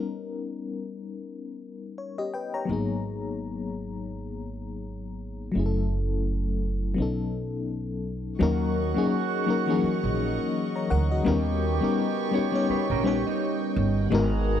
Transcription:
0.00 2.28 G3 medium
0.00 2.28 B3 soft
0.00 2.30 C#4 medium
0.00 2.30 D#4 soft
0.00 1.96 A#4 medium
1.98 2.17 C#5 medium
2.18 2.33 G4 soft
2.18 2.33 D#5 medium
2.34 2.53 B4 medium
2.34 2.52 G5 medium
2.54 2.88 C#5 soft
2.54 2.87 A#5 medium
2.65 5.49 F#3 medium
2.65 5.49 A#3 medium
2.65 5.50 B3 medium
2.69 5.51 G#1 medium
2.69 5.51 D#4 medium
2.69 5.52 G#4 medium
5.52 6.94 F#1 medium
5.52 6.93 F#3 medium
5.52 6.94 A3 medium
5.56 6.95 C#4 medium
5.56 6.96 E4 medium
5.56 5.64 G#4 medium
5.66 7.00 A4 medium
6.94 8.36 B1 medium
6.94 8.36 F#3 medium
6.94 8.37 B3 medium
6.94 8.38 C#4 medium
7.00 8.39 D#4 medium
7.00 8.40 A4 medium
8.39 8.92 D#2 loud
8.39 10.86 D#3 medium
8.39 8.90 F#3 loud
8.39 8.91 A#3 medium
8.39 10.86 C#4 medium
8.39 8.91 C#4 medium
8.39 8.91 D#4 medium
8.39 10.86 F#4 medium
8.39 11.22 A#4 medium
8.39 8.92 A#4 loud
8.39 14.07 D#5 medium
8.39 11.22 F#5 medium
8.39 11.22 C#6 medium
8.95 9.42 F#3 medium
8.95 9.43 A#3 medium
8.95 9.43 C#4 medium
8.95 9.44 D#4 medium
8.95 9.44 G#4 loud
8.95 muted upright bass stroke soft
9.46 9.65 F#3 medium
9.46 9.66 A#3 medium
9.46 9.66 C#4 medium
9.46 9.67 D#4 medium
9.46 9.67 A#4 medium
9.66 9.73 E3 medium
9.66 10.96 A#3 medium
9.66 10.97 C#4 medium
9.66 10.97 D#4 medium
9.66 10.56 G#4 medium
9.73 10.99 F#3 medium
9.83 muted upright bass stroke soft
10.04 10.36 A#1 medium
10.76 10.90 C#5 medium
10.76 10.90 A#5 medium
10.90 11.23 D2 medium
10.90 11.10 A#4 medium
10.90 11.09 F#5 medium
11.11 11.45 F#4 medium
11.11 11.45 D#5 medium
11.24 11.78 D#2 loud
11.24 13.71 C#3 medium
11.24 11.76 G3 medium
11.24 14.08 B3 medium
11.24 11.76 B3 medium
11.24 13.71 B3 medium
11.24 11.76 C#4 medium
11.24 11.77 D#4 medium
11.24 13.71 G4 medium
11.24 11.77 A#4 medium
11.24 14.08 G5 medium
11.24 14.08 C#6 medium
11.81 12.28 G3 medium
11.81 12.28 B3 medium
11.81 12.29 C#4 medium
11.81 12.30 D#4 medium
11.81 12.30 A#4 medium
11.81 muted upright bass stroke soft
12.31 12.51 G3 medium
12.31 12.51 B3 medium
12.31 12.52 C#4 medium
12.31 12.52 D#4 medium
12.31 12.52 G4 medium
12.31 12.68 C#5 medium
12.52 13.00 G3 medium
12.52 13.00 B3 medium
12.52 13.01 C#4 medium
12.52 13.01 D#4 medium
12.52 13.01 C#5 loud
12.70 12.89 D#4 medium
12.70 12.89 B4 medium
12.70 muted upright bass stroke soft
12.90 13.22 A#1 medium
12.90 13.05 C#4 medium
12.90 13.05 A#4 medium
13.03 14.03 G3 medium
13.03 14.03 B3 medium
13.03 13.25 B3 medium
13.03 14.04 C#4 medium
13.03 14.04 D#4 medium
13.03 13.25 G4 medium
13.03 14.05 C#5 medium
13.27 14.09 G3 medium
13.27 14.08 D#4 medium
13.76 14.09 G1 medium
14.11 14.60 G#1 loud
14.11 14.60 D#3 medium
14.11 14.60 G#3 loud
14.11 14.60 B3 medium
14.11 14.60 D#4 medium
14.11 14.60 F#4 medium
14.11 14.60 G#4 medium
14.11 14.60 F#5 medium
14.11 14.60 G#5 medium
14.11 14.60 A#5 medium
14.15 14.60 A#4 loud

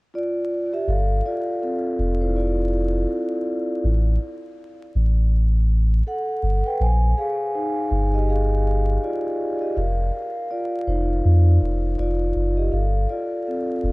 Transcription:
0.14 0.68 F4 medium
0.14 0.74 D5 medium
0.73 0.86 G4 medium
0.73 0.88 E5 loud
0.88 1.21 G1 loud
0.88 1.22 A4 medium
0.88 1.26 F5 loud
1.26 1.59 F4 medium
1.26 1.63 D5 medium
1.62 2.17 C4 medium
1.62 2.22 A4 medium
1.99 3.06 F1 loud
2.21 2.28 E4 medium
2.21 2.28 C5 medium
2.36 3.43 F4 medium
2.36 3.43 D5 medium
3.84 4.18 A1 medium
4.95 6.02 A1 loud
6.07 6.61 A4 medium
6.07 6.67 F#5 medium
6.43 6.62 G1 loud
6.66 6.79 B4 medium
6.66 6.81 G5 loud
6.80 7.14 A#1 medium
6.80 7.15 C5 medium
6.80 7.19 G#5 medium
7.18 7.34 G#4 medium
7.18 7.35 F5 medium
7.55 8.09 D#4 medium
7.55 8.09 C5 medium
7.91 8.98 G1 loud
8.14 8.27 G4 medium
8.14 8.29 D#5 medium
8.29 8.98 G#4 medium
8.29 9.05 F5 medium
9.03 9.57 F4 medium
9.03 9.57 D5 medium
9.61 9.75 G4 medium
9.61 9.77 D#5 medium
9.77 10.10 F1 loud
9.77 10.46 A#4 medium
9.77 10.53 F5 medium
10.51 10.85 F4 medium
10.51 10.88 D5 medium
10.87 11.21 F1 loud
10.87 11.94 D#4 medium
10.87 12.01 C5 medium
11.25 11.58 F2 loud
11.62 11.95 F1 medium
11.98 12.32 F1 medium
11.98 12.53 F4 medium
11.98 12.59 D5 medium
12.36 12.69 F#1 medium
12.57 12.71 G4 medium
12.57 12.73 D#5 medium
12.72 13.06 G1 medium
12.72 13.07 A4 medium
12.72 13.10 F5 medium
13.10 13.27 F4 medium
13.10 13.26 D5 medium
13.47 13.92 C4 medium
13.47 13.92 A4 medium
13.84 13.92 F1 loud

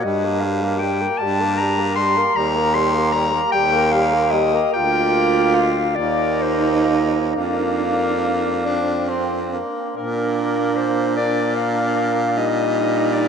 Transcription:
0.03 1.07 G2 medium
0.03 0.26 G3 medium
0.03 0.26 G4 medium
0.03 0.42 D#5 medium
0.24 0.46 A#3 medium
0.24 0.44 A#4 medium
0.40 0.63 G4 medium
0.40 0.80 F5 medium
0.45 0.65 G3 medium
0.62 0.82 A#3 medium
0.62 0.81 A#4 medium
0.79 1.03 G3 medium
0.79 1.03 G4 medium
0.79 1.19 G5 loud
1.01 1.23 A#3 medium
1.01 1.24 A#4 medium
1.18 1.42 G3 medium
1.18 1.59 A5 loud
1.22 2.24 G2 medium
1.22 1.42 G4 medium
1.40 1.60 A#3 medium
1.40 1.60 A#4 medium
1.58 1.80 G3 medium
1.58 1.82 G4 medium
1.58 1.95 A#5 loud
1.78 1.99 A#3 medium
1.78 2.03 A#4 medium
1.96 2.19 G3 medium
1.96 2.38 C6 loud
2.01 2.20 G4 medium
2.17 2.35 A#3 medium
2.17 2.37 A#4 medium
2.36 3.41 D#2 medium
2.36 2.57 G3 medium
2.36 2.59 G4 medium
2.36 2.76 A#5 loud
2.55 2.76 A#3 medium
2.55 2.78 A#4 medium
2.74 2.95 G3 medium
2.74 3.00 G4 medium
2.74 3.12 C6 loud
2.94 3.13 A#3 medium
2.98 3.16 A#4 medium
3.12 3.35 G3 medium
3.12 3.51 A#5 loud
3.16 3.38 G4 medium
3.34 3.55 A#3 medium
3.34 3.57 A#4 medium
3.52 4.61 D#2 medium
3.52 3.74 G3 medium
3.52 3.78 G4 medium
3.52 3.93 G5 loud
3.73 3.93 A#3 medium
3.73 3.95 A#4 medium
3.92 4.15 G3 medium
3.92 4.16 G4 medium
3.92 4.32 F5 loud
4.14 4.34 A#3 medium
4.14 4.36 A#4 medium
4.31 4.54 G3 medium
4.31 4.56 G4 medium
4.31 4.73 D#5 loud
4.53 4.71 A#3 medium
4.53 4.75 A#4 medium
4.72 5.94 D2 medium
4.72 5.80 A#3 medium
4.72 5.82 F4 medium
4.72 5.56 G5 loud
5.55 5.97 F5 loud
5.95 7.34 D#2 medium
5.95 7.33 A#3 medium
5.95 6.43 D5 loud
5.99 7.39 D#4 medium
6.42 7.04 C5 medium
7.36 9.58 F2 medium
7.36 8.64 A#3 medium
7.36 8.68 D4 medium
7.36 9.50 F5 loud
8.66 9.61 C4 medium
8.66 9.11 D4 medium
9.09 9.52 C4 medium
9.53 9.95 A#3 medium
9.95 13.28 A#2 medium
9.95 11.15 A#3 medium
9.95 11.15 D4 medium
9.95 10.78 A#4 medium
10.76 11.16 C5 medium
11.16 12.20 A#3 medium
11.16 12.35 D4 medium
11.16 11.55 D5 loud
11.56 12.39 F5 loud
12.37 13.28 G3 medium
12.37 13.28 D#4 medium
12.37 13.14 D#5 loud
13.12 13.28 D5 loud

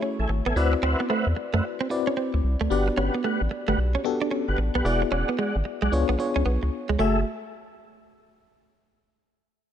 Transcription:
0.00 0.58 A3 medium
0.00 0.16 C#4 medium
0.00 0.56 E4 medium
0.00 0.57 F#4 medium
0.00 0.58 G#4 medium
0.00 0.57 C#5 loud
0.19 0.27 A1 medium
0.19 0.31 A4 medium
0.19 0.31 E5 medium
0.19 0.31 G#5 medium
0.29 0.42 G#1 loud
0.29 muted clean electric guitar stroke soft
0.46 0.53 A1 medium
0.46 0.54 B3 medium
0.46 0.57 A4 medium
0.46 0.55 E5 medium
0.46 0.58 G#5 medium
0.56 0.75 D2 loud
0.56 1.47 C4 medium
0.56 1.47 E4 medium
0.56 1.47 F#4 medium
0.56 0.74 B4 medium
0.56 1.48 B4 medium
0.56 0.74 C5 medium
0.56 1.48 D5 loud
0.56 0.74 E5 medium
0.56 0.74 F#5 loud
0.73 muted clean electric guitar stroke soft
0.83 0.95 D2 loud
0.83 0.97 C4 medium
0.83 1.01 B4 medium
0.83 1.01 C5 medium
0.83 1.01 E5 medium
0.83 1.01 F#5 medium
1.00 1.08 B3 medium
1.09 1.24 A3 medium
1.09 1.28 B4 medium
1.09 1.28 C5 medium
1.09 1.28 E5 medium
1.09 1.28 F#5 medium
1.27 1.34 E2 loud
1.37 muted clean electric guitar stroke soft
1.53 1.61 F#2 medium
1.53 1.61 A3 medium
1.53 1.65 B4 medium
1.53 1.65 C5 medium
1.53 1.65 E5 medium
1.53 1.65 F#5 medium
1.81 1.88 C4 medium
1.90 2.60 C4 medium
1.90 2.60 E4 medium
1.90 2.60 F#4 medium
1.90 2.61 B4 medium
1.90 2.61 D5 loud
1.90 muted clean electric guitar stroke soft
2.07 2.15 C#4 medium
2.17 2.31 C4 medium
2.34 2.41 D2 medium
2.34 muted clean electric guitar stroke soft
2.44 2.56 C2 loud
2.61 2.68 D2 medium
2.61 2.69 A3 medium
2.70 2.90 G1 loud
2.70 3.61 B3 medium
2.70 3.62 D4 medium
2.70 3.62 F#4 medium
2.70 2.88 G4 medium
2.70 3.62 G4 medium
2.70 2.88 B4 medium
2.70 3.62 D5 loud
2.70 2.89 F#5 medium
2.88 muted clean electric guitar stroke soft
2.97 3.10 G1 loud
2.97 3.11 C#4 medium
2.97 3.15 G4 medium
2.97 3.15 B4 medium
2.97 3.15 F#5 medium
3.15 3.22 B3 medium
3.24 3.38 A3 medium
3.24 3.42 G4 medium
3.24 3.42 B4 medium
3.24 3.42 F#5 medium
3.41 3.48 A1 medium
3.51 muted clean electric guitar stroke soft
3.68 3.75 G1 medium
3.68 3.76 A3 medium
3.68 3.79 G4 medium
3.68 3.79 B4 medium
3.68 3.79 F#5 medium
3.78 3.97 B1 loud
3.95 4.03 C#4 medium
4.04 4.75 B3 medium
4.04 4.75 D4 medium
4.04 4.75 F#4 medium
4.04 4.75 G4 medium
4.04 4.75 A4 medium
4.04 muted clean electric guitar stroke soft
4.22 4.29 D4 medium
4.31 4.45 C#4 medium
4.48 4.55 G1 loud
4.48 4.59 G4 medium
4.48 4.60 B4 medium
4.48 4.60 F#5 medium
4.58 4.70 A1 medium
4.58 muted clean electric guitar stroke soft
4.75 4.82 B1 medium
4.75 4.83 B3 medium
4.75 4.86 G4 medium
4.75 4.86 B4 medium
4.75 4.84 F#5 medium
4.85 5.04 E1 loud
4.85 5.76 B3 medium
4.85 5.76 E4 medium
4.85 5.76 F#4 medium
4.85 5.03 G#4 medium
4.85 5.76 G#4 medium
4.85 5.03 D5 medium
4.85 5.76 D5 medium
4.85 5.03 F#5 loud
5.02 muted clean electric guitar stroke soft
5.11 5.24 E1 loud
5.11 5.25 C#4 medium
5.11 5.29 G#4 medium
5.11 5.30 D5 medium
5.11 5.30 F#5 medium
5.29 5.37 B3 medium
5.38 5.52 G#3 medium
5.38 5.56 G#4 medium
5.38 5.56 D5 medium
5.38 5.57 F#5 medium
5.56 5.63 G#1 loud
5.65 muted clean electric guitar stroke soft
5.82 5.89 B1 medium
5.82 5.90 G#3 medium
5.82 5.93 G#4 medium
5.82 5.93 D5 medium
5.82 5.94 F#5 medium
5.92 6.05 C#2 loud
5.92 6.15 B3 medium
5.92 6.16 D4 medium
5.92 6.16 F4 medium
5.92 6.16 G#4 medium
5.92 6.16 C#5 loud
6.09 6.16 B1 loud
6.09 6.17 B3 medium
6.19 6.89 B3 medium
6.19 6.89 D4 medium
6.19 6.89 F4 medium
6.19 6.89 G#4 medium
6.19 6.89 C#5 loud
6.19 muted clean electric guitar stroke soft
6.36 6.43 C#2 medium
6.36 6.44 C#4 medium
6.46 6.58 B1 loud
6.46 6.59 B3 medium
6.63 6.70 C#2 medium
6.63 muted clean electric guitar stroke soft
6.89 6.97 C#2 medium
6.89 6.97 G#3 medium
6.99 7.24 F#1 loud
6.99 7.15 A3 medium
6.99 7.24 A3 medium
6.99 7.24 F#4 medium
6.99 7.20 G#4 medium
6.99 7.24 G#4 medium
6.99 7.20 A4 medium
6.99 7.21 E5 medium
6.99 7.24 E5 medium

